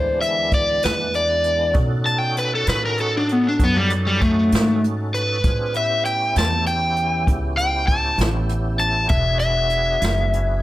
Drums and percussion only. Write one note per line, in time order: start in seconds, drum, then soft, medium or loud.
0.22 closed hi-hat medium
0.52 kick medium
0.52 closed hi-hat medium
0.82 snare loud
0.82 closed hi-hat medium
1.14 closed hi-hat soft
1.44 closed hi-hat medium
1.74 kick loud
1.74 closed hi-hat medium
2.06 closed hi-hat soft
2.37 closed hi-hat medium
2.67 snare loud
2.67 closed hi-hat medium
2.98 closed hi-hat medium
3.29 closed hi-hat medium
3.59 kick medium
3.59 closed hi-hat medium
3.90 closed hi-hat medium
4.21 kick medium
4.21 closed hi-hat medium
4.52 snare loud
4.52 closed hi-hat medium
4.84 closed hi-hat medium
5.14 closed hi-hat medium
5.44 kick loud
5.44 closed hi-hat medium
5.74 closed hi-hat medium
6.05 closed hi-hat medium
6.36 snare loud
6.36 closed hi-hat medium
6.66 closed hi-hat medium
6.96 closed hi-hat soft
7.27 kick medium
7.27 closed hi-hat medium
7.58 closed hi-hat medium
7.88 kick medium
7.88 closed hi-hat medium
8.18 snare loud
8.18 closed hi-hat medium
8.49 closed hi-hat medium
8.79 closed hi-hat medium
9.09 kick loud
9.09 closed hi-hat medium
9.39 closed hi-hat medium
9.70 closed hi-hat medium
10.02 snare loud
10.02 closed hi-hat medium
10.33 closed hi-hat medium